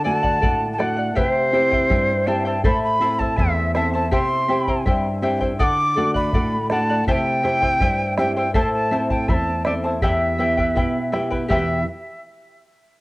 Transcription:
Already playing: D3
0.04 A3 D4 F#4 A4 D5 F#5 A5
0.23 D5 F#5, bombo low
0.41 A2 A4 D5 F#5, bombo low
0.73 A5
0.78 A3 D4 F#4 A4 D5 F#5, bombo rim
0.97 D5 F#5
1.15 C3 E4 G4 B4 C5 E5 G5, bombo low
1.28 C5
1.53 C4 E4 G4 C5 E5 G5
1.71 E4 C5 G5, bombo low
1.90 G2 E4 C5 E5 G5, bombo low
2.27 C4 E4 G4 C5 E5 G5 A5
2.45 E4 C5 G5 A5
2.64 A2 E4 A4 C5 E5 A5 B5, bombo low
2.83 B5
3.00 C4 E4 A4 C5 E5 A5
3.19 E4 C5 A5, bombo low
3.37 E2 E4 C5 E5 A5, bombo low
3.75 C4 E4 A4 C5 E5 A5, bombo rim
3.94 E4 C5 A5
4.11 C3 E4 G4 C5 E5 G5 C6, bombo low
4.48 C4 E4 G4 C5 E5 G5
4.68 E4 C5 G5, bombo low
4.86 G2 E4 C5 E5 G5, bombo low
5.22 C4 E4 G4 C5 E5 G5
5.41 E4 C5 G5, bombo low
5.59 D3 A4 D5 F#5 D6 D#6, bombo low
5.96 A3 D4 F#4 A4 D5 F#5
6.14 D5 F#5 B5, bombo low
6.33 A2 A4 D5 F#5, bombo low
6.70 A3 D4 F#4 A4 D5 F#5 A5, bombo rim
6.89 D5 F#5
7.07 C3 E4 G4 C5 E5 G5 A5, bombo low
7.12 G5
7.43 C4 E4 G4 C5 E5 G5
7.62 E4 C5 G5, bombo low
7.80 G2 E4 C5 E5 G5, bombo low
8.18 C4 E4 G4 C5 E5 G5, bombo rim
8.36 E4 C5 G5
8.54 A2 E4 A4 C5 E5 A5, bombo low
8.74 A5
8.91 C4 E4 A4 C5 E5 A5
9.10 E4 C5 G5 A5, bombo low
9.28 E2 E4 C5 E5 A5 B5, bombo low
9.34 A5
9.65 C4 E4 A4 C5 D5 E5 A5, bombo rim
9.84 E4 C5 A5
10.02 E2 E4 G4 B4 E5 F#5 G5, bombo low
10.06 E5
10.39 B3 E4 G4 B4 E5 G5
10.57 E4 B4 G5, bombo low
10.75 B2 E4 B4 E5 G5, bombo low
11.12 B3 E4 G4 B4 E5 G5, bombo rim
11.30 E4 B4 G5, bombo low
11.49 E2 B2 E3 B3 E4 G4 B4 E5 G5, bombo low

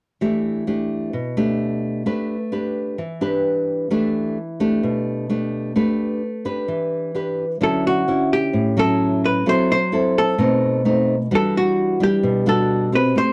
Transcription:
0.21 E3 A3 D4 G4
0.67 A3 D4 G4
1.13 B2
1.37 A3 D4 G4
2.06 A3 D4 G4 B4
2.52 D4 G4 B4
2.98 E3
3.21 D4 G4 B4
3.91 E3 A3 D4 G4
4.60 A3 D4 G4
4.83 B2
5.30 A3 D4 G4
5.76 A3 D4 G4 B4
6.45 D4 G4 B4
6.68 E3
7.15 D4 G4 B4
7.61 D3 F#3 C#4 E4 A4
7.87 F#4
8.08 C#4 E4
8.33 G4
8.53 A2
8.77 F#3 C#4 E4 A4
9.25 B4
9.46 F#3 C4 E4 A4 C5
9.72 C5
9.92 C4 E4 A4
10.18 A4
10.38 B2 A3 C4 D#4
10.85 A3 C4 D#4
11.31 E3 G3 D4 F#4
11.35 A4
11.57 F#4
12.00 G3 D4 G4
12.23 B2
12.46 G3 D4 F#4 A4
12.92 C4 G4 B4
13.16 A3 C5

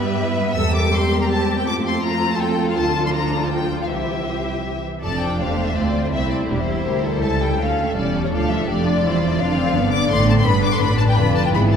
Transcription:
Already playing: G2 G3 B3 G4 B4 E5
0.04 G4
0.22 E4 B4
0.40 B3
0.57 E2 G3 C4 G4 A4 A#4 E6
0.75 D6
0.94 G4 C6
1.22 A#5
1.30 A5
1.58 G5
1.67 F2 A3 F4 A4 D6
1.87 C6
2.04 F4 A#5
2.32 A5
2.41 A4 G5
2.69 F5
2.77 D2 F3 D4 F4 A5
3.06 C6
3.15 A#5
3.44 A5
3.52 G5
3.83 F5
3.88 C2 E3 E4 G4 C5 E5
5.02 F1 F2 F3 D4 A4 D5 A5
5.21 G5
5.39 E1 E2 A3 G4 C5 F5
5.67 E5
5.76 D2 A3 C4 F4 D5
6.04 C5
6.12 C2 C4 E4 C5 E5
6.30 D5
6.49 E1 E2 G3 D4 G4 C5
6.67 E4
6.86 D2 G3 G4 A#4
7.05 A4
7.22 C#2 E4 A4 A5
7.42 G5
7.58 D2 A3 C#4 A4 F5
7.88 E5
7.94 E1 E2 G3 C#4 D5
8.24 C#5
8.30 D2 F3 D4 A4
8.34 F5
8.51 E5
8.67 F1 F2 A3 D4 G4 D5
8.85 F4
9.02 E1 E2 G3 E4 C5
9.20 F3
9.37 F1 F2 D3 D4 F4 D5 F5
9.56 C4
9.74 G1 G2 B3 D4 D5
9.92 D6
10.10 A1 A2 A3 C4 C6
10.29 A5
10.39 C6
10.45 G1 G2 B3 D4 B4 B5
10.63 D6
10.74 C6
10.81 A1 A2 D4 B5
10.98 A5
11.08 G5
11.16 F1 F2 D3 D4 F4 B5
11.35 A5
11.45 G5
11.53 G#1 G#2 E3 B3 E4 G#4 B5
11.73 A5

